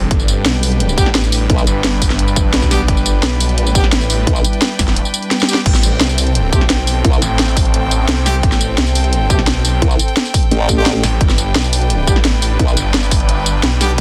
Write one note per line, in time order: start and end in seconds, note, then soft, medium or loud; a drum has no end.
0.00 5.62 G3 medium
0.00 0.11 C4 medium
0.00 0.53 A4 medium
0.00 0.11 G5 medium
0.11 0.44 G1 loud
0.11 2.86 D4 medium
0.11 6.92 D4 medium
0.11 5.62 B4 medium
0.11 kick loud
0.11 closed hi-hat medium
0.20 tambourine soft
0.28 6.42 B4 medium
0.28 14.01 G5 medium
0.28 closed hi-hat medium
0.28 tambourine medium
0.46 0.96 B1 loud
0.46 snare loud
0.46 closed hi-hat medium
0.63 open hi-hat medium
0.63 tambourine medium
0.72 closed hi-hat soft
0.80 closed hi-hat medium
0.89 tambourine soft
0.98 1.48 A1 loud
0.98 1.07 B3 medium
0.98 1.07 D4 medium
0.98 1.07 G4 medium
0.98 kick loud
0.98 closed hi-hat medium
0.98 tambourine medium
1.06 snare soft
1.15 snare loud
1.15 closed hi-hat medium
1.24 tambourine soft
1.32 open hi-hat medium
1.32 tambourine medium
1.50 1.66 B1 loud
1.50 kick loud
1.50 closed hi-hat medium
1.58 tambourine soft
1.67 2.52 G1 medium
1.67 closed hi-hat medium
1.67 tambourine medium
1.84 snare loud
1.84 closed hi-hat medium
2.02 kick medium
2.02 open hi-hat medium
2.02 tambourine medium
2.10 snare soft
2.10 closed hi-hat soft
2.19 closed hi-hat loud
2.28 tambourine soft
2.36 kick loud
2.36 closed hi-hat medium
2.36 tambourine medium
2.54 2.87 B1 loud
2.54 snare loud
2.54 closed hi-hat medium
2.62 kick medium
2.62 tambourine soft
2.71 2.81 B3 medium
2.71 2.81 D4 medium
2.71 2.81 G4 loud
2.71 snare medium
2.71 open hi-hat medium
2.71 tambourine medium
2.88 3.22 G1 loud
2.88 5.63 E4 medium
2.88 kick loud
2.88 closed hi-hat medium
2.97 tambourine soft
3.06 closed hi-hat medium
3.06 tambourine medium
3.23 3.74 B1 medium
3.23 snare loud
3.23 closed hi-hat medium
3.40 open hi-hat medium
3.40 tambourine medium
3.49 closed hi-hat soft
3.58 closed hi-hat loud
3.66 tambourine soft
3.75 4.26 A1 loud
3.75 3.85 B3 medium
3.75 3.85 D4 medium
3.75 3.85 G4 medium
3.75 kick loud
3.75 closed hi-hat medium
3.75 tambourine medium
3.84 snare medium
3.92 snare loud
3.92 closed hi-hat medium
4.01 tambourine soft
4.10 open hi-hat medium
4.10 tambourine medium
4.27 4.43 B1 loud
4.27 kick loud
4.27 closed hi-hat loud
4.36 tambourine soft
4.44 closed hi-hat medium
4.44 tambourine medium
4.53 closed hi-hat soft
4.62 snare loud
4.62 closed hi-hat medium
4.79 4.96 G1 loud
4.79 kick medium
4.79 snare medium
4.79 open hi-hat medium
4.79 tambourine medium
4.88 snare soft
4.88 closed hi-hat soft
4.96 closed hi-hat loud
5.05 tambourine soft
5.14 closed hi-hat medium
5.14 tambourine medium
5.22 closed hi-hat soft
5.31 snare medium
5.31 closed hi-hat loud
5.40 snare medium
5.40 tambourine soft
5.48 5.58 B3 medium
5.48 5.58 D4 medium
5.48 5.58 G4 loud
5.48 open hi-hat medium
5.48 tambourine medium
5.54 snare loud
5.66 5.99 A1 loud
5.66 11.21 C4 medium
5.66 kick loud
5.66 closed hi-hat loud
5.66 crash loud
5.75 snare soft
5.75 tambourine soft
5.83 closed hi-hat medium
5.83 tambourine medium
5.99 6.51 C2 loud
5.99 12.23 A4 medium
5.99 snare loud
5.99 closed hi-hat medium
6.09 tambourine soft
6.18 open hi-hat medium
6.18 tambourine medium
6.27 closed hi-hat soft
6.35 closed hi-hat loud
6.53 7.03 B1 loud
6.53 6.62 A3 medium
6.53 6.62 C4 medium
6.53 6.62 G4 medium
6.53 kick loud
6.53 closed hi-hat medium
6.53 tambourine medium
6.61 snare medium
6.70 snare loud
6.70 closed hi-hat medium
6.87 open hi-hat medium
6.87 tambourine medium
7.05 7.21 C2 medium
7.05 kick loud
7.05 closed hi-hat medium
7.13 tambourine soft
7.22 8.07 A1 medium
7.22 closed hi-hat medium
7.22 tambourine medium
7.39 snare loud
7.39 closed hi-hat medium
7.48 tambourine soft
7.57 kick loud
7.57 open hi-hat medium
7.57 tambourine medium
7.65 closed hi-hat soft
7.74 closed hi-hat loud
7.91 closed hi-hat medium
7.91 tambourine medium
8.09 8.42 C2 loud
8.09 snare loud
8.09 closed hi-hat medium
8.26 8.36 A3 medium
8.26 8.36 C4 medium
8.26 8.36 G4 loud
8.26 snare medium
8.26 open hi-hat medium
8.26 tambourine medium
8.43 8.77 A1 loud
8.43 kick loud
8.43 closed hi-hat medium
8.52 snare soft
8.52 tambourine soft
8.61 closed hi-hat medium
8.61 tambourine medium
8.78 9.29 C2 loud
8.78 snare loud
8.78 closed hi-hat medium
8.87 tambourine soft
8.95 open hi-hat medium
8.95 tambourine medium
9.04 closed hi-hat soft
9.13 closed hi-hat loud
9.30 9.81 B1 medium
9.30 9.40 A3 medium
9.30 9.40 C4 medium
9.30 9.40 G4 medium
9.30 kick loud
9.30 closed hi-hat medium
9.30 tambourine medium
9.39 snare medium
9.47 snare loud
9.47 closed hi-hat medium
9.65 open hi-hat medium
9.65 tambourine medium
9.82 9.98 C2 loud
9.82 kick loud
9.82 closed hi-hat medium
9.91 tambourine soft
9.99 closed hi-hat medium
9.99 tambourine medium
10.08 closed hi-hat soft
10.17 snare loud
10.17 closed hi-hat medium
10.25 closed hi-hat soft
10.25 tambourine soft
10.34 kick loud
10.34 open hi-hat medium
10.34 tambourine medium
10.43 closed hi-hat soft
10.51 11.02 A1 loud
10.51 closed hi-hat medium
10.69 kick medium
10.69 closed hi-hat medium
10.69 tambourine medium
10.77 10.87 A3 medium
10.77 10.87 C4 medium
10.77 10.87 G4 loud
10.86 snare loud
10.86 closed hi-hat medium
11.03 11.19 A1 loud
11.03 snare medium
11.03 open hi-hat medium
11.03 tambourine medium
11.21 11.54 G1 loud
11.21 14.01 D4 medium
11.21 kick loud
11.21 closed hi-hat medium
11.26 14.01 B4 medium
11.26 snare soft
11.26 tambourine soft
11.38 closed hi-hat medium
11.38 tambourine medium
11.55 12.06 B1 loud
11.55 snare loud
11.55 closed hi-hat medium
11.64 tambourine soft
11.73 open hi-hat medium
11.73 tambourine medium
11.81 closed hi-hat soft
11.90 closed hi-hat medium
12.07 12.58 A1 loud
12.07 12.17 B3 medium
12.07 12.17 D4 medium
12.07 12.17 G4 medium
12.07 kick loud
12.07 closed hi-hat medium
12.07 tambourine medium
12.16 snare soft
12.25 snare loud
12.25 closed hi-hat medium
12.42 open hi-hat medium
12.42 tambourine medium
12.59 12.75 B1 loud
12.59 kick loud
12.59 closed hi-hat medium
12.68 tambourine soft
12.77 13.62 G1 medium
12.77 closed hi-hat medium
12.77 tambourine medium
12.94 snare loud
12.94 closed hi-hat medium
13.03 tambourine soft
13.11 kick loud
13.11 open hi-hat medium
13.11 tambourine medium
13.20 closed hi-hat soft
13.29 closed hi-hat loud
13.46 closed hi-hat medium
13.46 tambourine medium
13.63 13.97 B1 loud
13.63 snare loud
13.63 closed hi-hat medium
13.81 13.91 B3 loud
13.81 13.91 D4 medium
13.81 13.91 G4 loud
13.81 snare medium
13.81 open hi-hat medium
13.81 tambourine medium